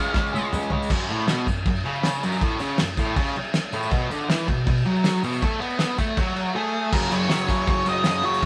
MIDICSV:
0, 0, Header, 1, 5, 480
1, 0, Start_track
1, 0, Tempo, 376884
1, 1148, Time_signature, 4, 2, 24, 8
1, 10768, End_track
2, 0, Start_track
2, 0, Title_t, "Lead electric guitar"
2, 0, Program_c, 0, 29
2, 0, Note_on_c, 0, 77, 101
2, 599, Note_off_c, 0, 77, 0
2, 8352, Note_on_c, 0, 68, 81
2, 8832, Note_on_c, 0, 70, 94
2, 8844, Note_off_c, 0, 68, 0
2, 9084, Note_off_c, 0, 70, 0
2, 9084, Note_on_c, 0, 73, 99
2, 9786, Note_off_c, 0, 73, 0
2, 9801, Note_on_c, 0, 73, 101
2, 10040, Note_off_c, 0, 73, 0
2, 10045, Note_on_c, 0, 75, 114
2, 10267, Note_off_c, 0, 75, 0
2, 10283, Note_on_c, 0, 75, 109
2, 10510, Note_off_c, 0, 75, 0
2, 10510, Note_on_c, 0, 73, 105
2, 10768, Note_off_c, 0, 73, 0
2, 10768, End_track
3, 0, Start_track
3, 0, Title_t, "Distorted electric guitar"
3, 0, Program_c, 1, 30
3, 0, Note_on_c, 1, 49, 88
3, 0, Note_on_c, 1, 56, 90
3, 0, Note_on_c, 1, 61, 98
3, 166, Note_off_c, 1, 49, 0
3, 178, Note_off_c, 1, 56, 0
3, 181, Note_on_c, 1, 49, 105
3, 193, Note_on_c, 1, 56, 106
3, 197, Note_off_c, 1, 61, 0
3, 212, Note_on_c, 1, 61, 112
3, 405, Note_off_c, 1, 49, 0
3, 416, Note_off_c, 1, 56, 0
3, 421, Note_on_c, 1, 49, 88
3, 425, Note_off_c, 1, 61, 0
3, 432, Note_on_c, 1, 56, 95
3, 441, Note_on_c, 1, 61, 102
3, 657, Note_off_c, 1, 49, 0
3, 665, Note_off_c, 1, 56, 0
3, 672, Note_on_c, 1, 49, 78
3, 680, Note_off_c, 1, 61, 0
3, 681, Note_on_c, 1, 56, 89
3, 695, Note_on_c, 1, 61, 97
3, 885, Note_off_c, 1, 49, 0
3, 899, Note_off_c, 1, 56, 0
3, 901, Note_on_c, 1, 49, 87
3, 911, Note_off_c, 1, 61, 0
3, 915, Note_on_c, 1, 56, 88
3, 927, Note_on_c, 1, 61, 88
3, 1130, Note_off_c, 1, 49, 0
3, 1137, Note_off_c, 1, 56, 0
3, 1143, Note_off_c, 1, 61, 0
3, 1149, Note_on_c, 1, 42, 109
3, 1382, Note_off_c, 1, 42, 0
3, 1397, Note_on_c, 1, 45, 102
3, 1626, Note_off_c, 1, 45, 0
3, 1631, Note_on_c, 1, 47, 95
3, 1863, Note_off_c, 1, 47, 0
3, 1874, Note_on_c, 1, 42, 76
3, 2064, Note_off_c, 1, 42, 0
3, 2123, Note_on_c, 1, 42, 76
3, 2308, Note_off_c, 1, 42, 0
3, 2355, Note_on_c, 1, 49, 109
3, 2825, Note_off_c, 1, 49, 0
3, 2846, Note_on_c, 1, 42, 104
3, 3071, Note_off_c, 1, 42, 0
3, 3085, Note_on_c, 1, 45, 107
3, 3310, Note_off_c, 1, 45, 0
3, 3319, Note_on_c, 1, 49, 104
3, 3548, Note_off_c, 1, 49, 0
3, 3570, Note_on_c, 1, 42, 72
3, 3752, Note_off_c, 1, 42, 0
3, 3810, Note_on_c, 1, 45, 110
3, 4033, Note_off_c, 1, 45, 0
3, 4045, Note_on_c, 1, 49, 115
3, 4271, Note_off_c, 1, 49, 0
3, 4754, Note_on_c, 1, 45, 106
3, 4985, Note_off_c, 1, 45, 0
3, 4993, Note_on_c, 1, 47, 113
3, 5225, Note_off_c, 1, 47, 0
3, 5234, Note_on_c, 1, 50, 108
3, 5464, Note_off_c, 1, 50, 0
3, 5469, Note_on_c, 1, 52, 105
3, 5703, Note_off_c, 1, 52, 0
3, 5721, Note_on_c, 1, 47, 83
3, 5908, Note_off_c, 1, 47, 0
3, 5947, Note_on_c, 1, 47, 74
3, 6141, Note_off_c, 1, 47, 0
3, 6190, Note_on_c, 1, 54, 102
3, 6663, Note_off_c, 1, 54, 0
3, 6673, Note_on_c, 1, 47, 110
3, 6905, Note_off_c, 1, 47, 0
3, 6906, Note_on_c, 1, 57, 107
3, 7135, Note_off_c, 1, 57, 0
3, 7140, Note_on_c, 1, 59, 107
3, 7618, Note_off_c, 1, 59, 0
3, 7625, Note_on_c, 1, 57, 107
3, 7860, Note_off_c, 1, 57, 0
3, 7866, Note_on_c, 1, 54, 107
3, 8339, Note_on_c, 1, 57, 95
3, 8340, Note_off_c, 1, 54, 0
3, 8816, Note_off_c, 1, 57, 0
3, 8818, Note_on_c, 1, 42, 95
3, 8831, Note_on_c, 1, 49, 98
3, 8838, Note_on_c, 1, 54, 111
3, 9044, Note_off_c, 1, 42, 0
3, 9049, Note_on_c, 1, 42, 93
3, 9050, Note_off_c, 1, 49, 0
3, 9065, Note_on_c, 1, 49, 88
3, 9066, Note_off_c, 1, 54, 0
3, 9071, Note_on_c, 1, 54, 99
3, 9284, Note_off_c, 1, 42, 0
3, 9289, Note_on_c, 1, 42, 82
3, 9290, Note_off_c, 1, 49, 0
3, 9305, Note_on_c, 1, 49, 90
3, 9306, Note_off_c, 1, 54, 0
3, 9311, Note_on_c, 1, 54, 103
3, 9527, Note_off_c, 1, 42, 0
3, 9527, Note_off_c, 1, 49, 0
3, 9532, Note_on_c, 1, 42, 88
3, 9542, Note_on_c, 1, 49, 94
3, 9553, Note_off_c, 1, 54, 0
3, 9558, Note_on_c, 1, 54, 92
3, 9757, Note_off_c, 1, 42, 0
3, 9768, Note_off_c, 1, 49, 0
3, 9772, Note_on_c, 1, 42, 98
3, 9777, Note_off_c, 1, 54, 0
3, 9783, Note_on_c, 1, 49, 100
3, 9792, Note_on_c, 1, 54, 118
3, 9989, Note_off_c, 1, 42, 0
3, 10005, Note_off_c, 1, 49, 0
3, 10005, Note_on_c, 1, 42, 83
3, 10014, Note_off_c, 1, 54, 0
3, 10020, Note_on_c, 1, 49, 90
3, 10029, Note_on_c, 1, 54, 97
3, 10222, Note_off_c, 1, 42, 0
3, 10229, Note_off_c, 1, 49, 0
3, 10236, Note_off_c, 1, 54, 0
3, 10237, Note_on_c, 1, 42, 81
3, 10244, Note_on_c, 1, 49, 92
3, 10252, Note_on_c, 1, 54, 87
3, 10461, Note_off_c, 1, 42, 0
3, 10477, Note_off_c, 1, 49, 0
3, 10477, Note_on_c, 1, 42, 90
3, 10486, Note_off_c, 1, 54, 0
3, 10492, Note_on_c, 1, 49, 89
3, 10502, Note_on_c, 1, 54, 95
3, 10719, Note_off_c, 1, 42, 0
3, 10726, Note_off_c, 1, 49, 0
3, 10734, Note_off_c, 1, 54, 0
3, 10768, End_track
4, 0, Start_track
4, 0, Title_t, "Muted distorted electric guitar strokes"
4, 4286, Note_on_c, 9, 29, 61
4, 4413, Note_off_c, 9, 29, 0
4, 10768, End_track
5, 0, Start_track
5, 0, Title_t, "Drums"
5, 103, Note_on_c, 9, 54, 30
5, 180, Note_on_c, 9, 38, 67
5, 184, Note_on_c, 9, 36, 124
5, 225, Note_off_c, 9, 54, 0
5, 225, Note_on_c, 9, 54, 30
5, 307, Note_off_c, 9, 38, 0
5, 311, Note_off_c, 9, 36, 0
5, 339, Note_off_c, 9, 54, 0
5, 339, Note_on_c, 9, 54, 32
5, 435, Note_on_c, 9, 48, 66
5, 456, Note_off_c, 9, 54, 0
5, 456, Note_on_c, 9, 54, 79
5, 562, Note_off_c, 9, 48, 0
5, 570, Note_off_c, 9, 54, 0
5, 570, Note_on_c, 9, 54, 28
5, 670, Note_on_c, 9, 45, 93
5, 677, Note_off_c, 9, 54, 0
5, 677, Note_on_c, 9, 54, 100
5, 798, Note_off_c, 9, 45, 0
5, 805, Note_off_c, 9, 54, 0
5, 810, Note_on_c, 9, 54, 31
5, 896, Note_on_c, 9, 43, 98
5, 937, Note_off_c, 9, 54, 0
5, 1023, Note_off_c, 9, 43, 0
5, 1050, Note_on_c, 9, 54, 75
5, 1148, Note_on_c, 9, 36, 116
5, 1150, Note_on_c, 9, 49, 122
5, 1150, Note_on_c, 9, 57, 87
5, 1177, Note_off_c, 9, 54, 0
5, 1275, Note_off_c, 9, 36, 0
5, 1277, Note_off_c, 9, 49, 0
5, 1277, Note_off_c, 9, 57, 0
5, 1404, Note_on_c, 9, 57, 63
5, 1528, Note_on_c, 9, 54, 28
5, 1531, Note_off_c, 9, 57, 0
5, 1627, Note_on_c, 9, 38, 124
5, 1631, Note_on_c, 9, 57, 85
5, 1639, Note_off_c, 9, 54, 0
5, 1639, Note_on_c, 9, 54, 103
5, 1755, Note_off_c, 9, 38, 0
5, 1758, Note_off_c, 9, 57, 0
5, 1766, Note_off_c, 9, 54, 0
5, 1870, Note_on_c, 9, 57, 62
5, 1871, Note_on_c, 9, 36, 85
5, 1883, Note_on_c, 9, 54, 75
5, 1998, Note_off_c, 9, 36, 0
5, 1998, Note_off_c, 9, 57, 0
5, 2010, Note_off_c, 9, 54, 0
5, 2108, Note_on_c, 9, 57, 82
5, 2112, Note_on_c, 9, 36, 118
5, 2235, Note_off_c, 9, 57, 0
5, 2239, Note_off_c, 9, 36, 0
5, 2241, Note_on_c, 9, 54, 29
5, 2361, Note_on_c, 9, 57, 57
5, 2369, Note_off_c, 9, 54, 0
5, 2487, Note_on_c, 9, 54, 28
5, 2488, Note_off_c, 9, 57, 0
5, 2591, Note_on_c, 9, 38, 116
5, 2595, Note_on_c, 9, 57, 80
5, 2615, Note_off_c, 9, 54, 0
5, 2617, Note_on_c, 9, 54, 95
5, 2718, Note_off_c, 9, 38, 0
5, 2722, Note_off_c, 9, 57, 0
5, 2744, Note_off_c, 9, 54, 0
5, 2842, Note_on_c, 9, 57, 70
5, 2843, Note_on_c, 9, 54, 76
5, 2956, Note_off_c, 9, 54, 0
5, 2956, Note_on_c, 9, 54, 71
5, 2969, Note_off_c, 9, 57, 0
5, 3075, Note_on_c, 9, 36, 115
5, 3079, Note_on_c, 9, 57, 89
5, 3082, Note_off_c, 9, 54, 0
5, 3082, Note_on_c, 9, 54, 27
5, 3202, Note_off_c, 9, 36, 0
5, 3206, Note_off_c, 9, 57, 0
5, 3209, Note_off_c, 9, 54, 0
5, 3302, Note_on_c, 9, 54, 73
5, 3316, Note_on_c, 9, 57, 65
5, 3429, Note_off_c, 9, 54, 0
5, 3441, Note_on_c, 9, 54, 29
5, 3443, Note_off_c, 9, 57, 0
5, 3541, Note_on_c, 9, 38, 122
5, 3545, Note_on_c, 9, 57, 94
5, 3556, Note_off_c, 9, 54, 0
5, 3556, Note_on_c, 9, 54, 93
5, 3668, Note_off_c, 9, 38, 0
5, 3672, Note_off_c, 9, 57, 0
5, 3683, Note_off_c, 9, 54, 0
5, 3784, Note_on_c, 9, 57, 70
5, 3787, Note_on_c, 9, 36, 92
5, 3787, Note_on_c, 9, 54, 73
5, 3911, Note_off_c, 9, 57, 0
5, 3914, Note_off_c, 9, 36, 0
5, 3914, Note_off_c, 9, 54, 0
5, 4030, Note_on_c, 9, 36, 126
5, 4031, Note_on_c, 9, 57, 98
5, 4157, Note_off_c, 9, 36, 0
5, 4158, Note_off_c, 9, 57, 0
5, 4160, Note_on_c, 9, 54, 29
5, 4277, Note_on_c, 9, 57, 69
5, 4288, Note_off_c, 9, 54, 0
5, 4386, Note_on_c, 9, 54, 29
5, 4404, Note_off_c, 9, 57, 0
5, 4505, Note_off_c, 9, 54, 0
5, 4505, Note_on_c, 9, 54, 95
5, 4506, Note_on_c, 9, 38, 118
5, 4510, Note_on_c, 9, 57, 88
5, 4632, Note_off_c, 9, 54, 0
5, 4633, Note_off_c, 9, 38, 0
5, 4637, Note_off_c, 9, 57, 0
5, 4743, Note_on_c, 9, 54, 80
5, 4754, Note_on_c, 9, 57, 66
5, 4870, Note_off_c, 9, 54, 0
5, 4874, Note_on_c, 9, 54, 74
5, 4882, Note_off_c, 9, 57, 0
5, 4980, Note_on_c, 9, 57, 89
5, 4987, Note_on_c, 9, 36, 119
5, 5002, Note_off_c, 9, 54, 0
5, 5108, Note_off_c, 9, 57, 0
5, 5114, Note_off_c, 9, 36, 0
5, 5235, Note_on_c, 9, 54, 79
5, 5236, Note_on_c, 9, 57, 61
5, 5363, Note_off_c, 9, 54, 0
5, 5364, Note_off_c, 9, 57, 0
5, 5472, Note_on_c, 9, 38, 121
5, 5476, Note_on_c, 9, 57, 88
5, 5482, Note_on_c, 9, 54, 100
5, 5599, Note_off_c, 9, 38, 0
5, 5603, Note_off_c, 9, 57, 0
5, 5610, Note_off_c, 9, 54, 0
5, 5707, Note_on_c, 9, 36, 92
5, 5708, Note_on_c, 9, 57, 67
5, 5835, Note_off_c, 9, 36, 0
5, 5836, Note_off_c, 9, 57, 0
5, 5941, Note_on_c, 9, 57, 84
5, 5947, Note_on_c, 9, 36, 121
5, 6069, Note_off_c, 9, 57, 0
5, 6074, Note_off_c, 9, 36, 0
5, 6085, Note_on_c, 9, 54, 31
5, 6183, Note_on_c, 9, 57, 61
5, 6212, Note_off_c, 9, 54, 0
5, 6311, Note_off_c, 9, 57, 0
5, 6315, Note_on_c, 9, 54, 31
5, 6421, Note_on_c, 9, 38, 112
5, 6425, Note_on_c, 9, 57, 80
5, 6429, Note_off_c, 9, 54, 0
5, 6429, Note_on_c, 9, 54, 104
5, 6549, Note_off_c, 9, 38, 0
5, 6553, Note_off_c, 9, 57, 0
5, 6557, Note_off_c, 9, 54, 0
5, 6661, Note_on_c, 9, 57, 62
5, 6669, Note_on_c, 9, 54, 84
5, 6784, Note_off_c, 9, 54, 0
5, 6784, Note_on_c, 9, 54, 74
5, 6789, Note_off_c, 9, 57, 0
5, 6907, Note_on_c, 9, 36, 115
5, 6907, Note_on_c, 9, 57, 88
5, 6911, Note_off_c, 9, 54, 0
5, 7034, Note_off_c, 9, 57, 0
5, 7035, Note_off_c, 9, 36, 0
5, 7153, Note_on_c, 9, 57, 62
5, 7260, Note_on_c, 9, 54, 29
5, 7280, Note_off_c, 9, 57, 0
5, 7374, Note_on_c, 9, 38, 119
5, 7378, Note_on_c, 9, 57, 88
5, 7384, Note_off_c, 9, 54, 0
5, 7384, Note_on_c, 9, 54, 107
5, 7501, Note_off_c, 9, 38, 0
5, 7505, Note_off_c, 9, 57, 0
5, 7511, Note_off_c, 9, 54, 0
5, 7617, Note_on_c, 9, 54, 80
5, 7622, Note_on_c, 9, 57, 68
5, 7623, Note_on_c, 9, 36, 90
5, 7745, Note_off_c, 9, 54, 0
5, 7750, Note_off_c, 9, 57, 0
5, 7751, Note_off_c, 9, 36, 0
5, 7858, Note_on_c, 9, 57, 98
5, 7862, Note_on_c, 9, 36, 120
5, 7985, Note_off_c, 9, 57, 0
5, 7990, Note_off_c, 9, 36, 0
5, 8100, Note_on_c, 9, 54, 32
5, 8105, Note_on_c, 9, 57, 66
5, 8217, Note_off_c, 9, 54, 0
5, 8217, Note_on_c, 9, 54, 31
5, 8232, Note_off_c, 9, 57, 0
5, 8344, Note_off_c, 9, 54, 0
5, 8818, Note_on_c, 9, 49, 125
5, 8818, Note_on_c, 9, 57, 92
5, 8821, Note_on_c, 9, 36, 119
5, 8945, Note_on_c, 9, 54, 33
5, 8946, Note_off_c, 9, 49, 0
5, 8946, Note_off_c, 9, 57, 0
5, 8948, Note_off_c, 9, 36, 0
5, 9055, Note_off_c, 9, 54, 0
5, 9055, Note_on_c, 9, 54, 80
5, 9069, Note_on_c, 9, 57, 66
5, 9182, Note_off_c, 9, 54, 0
5, 9197, Note_off_c, 9, 57, 0
5, 9291, Note_on_c, 9, 38, 116
5, 9295, Note_on_c, 9, 57, 87
5, 9315, Note_on_c, 9, 54, 103
5, 9418, Note_off_c, 9, 38, 0
5, 9422, Note_off_c, 9, 57, 0
5, 9442, Note_off_c, 9, 54, 0
5, 9529, Note_on_c, 9, 38, 36
5, 9533, Note_on_c, 9, 57, 68
5, 9534, Note_on_c, 9, 36, 95
5, 9543, Note_on_c, 9, 54, 75
5, 9657, Note_off_c, 9, 38, 0
5, 9661, Note_off_c, 9, 36, 0
5, 9661, Note_off_c, 9, 57, 0
5, 9670, Note_off_c, 9, 54, 0
5, 9771, Note_on_c, 9, 57, 88
5, 9775, Note_on_c, 9, 36, 123
5, 9781, Note_on_c, 9, 54, 27
5, 9899, Note_off_c, 9, 57, 0
5, 9903, Note_off_c, 9, 36, 0
5, 9908, Note_off_c, 9, 54, 0
5, 10008, Note_on_c, 9, 57, 62
5, 10009, Note_on_c, 9, 54, 79
5, 10136, Note_off_c, 9, 57, 0
5, 10137, Note_off_c, 9, 54, 0
5, 10240, Note_on_c, 9, 38, 112
5, 10244, Note_on_c, 9, 57, 84
5, 10245, Note_on_c, 9, 54, 92
5, 10368, Note_off_c, 9, 38, 0
5, 10372, Note_off_c, 9, 54, 0
5, 10372, Note_off_c, 9, 57, 0
5, 10482, Note_on_c, 9, 57, 69
5, 10610, Note_off_c, 9, 57, 0
5, 10625, Note_on_c, 9, 54, 65
5, 10730, Note_on_c, 9, 57, 95
5, 10752, Note_off_c, 9, 54, 0
5, 10768, Note_off_c, 9, 57, 0
5, 10768, End_track
0, 0, End_of_file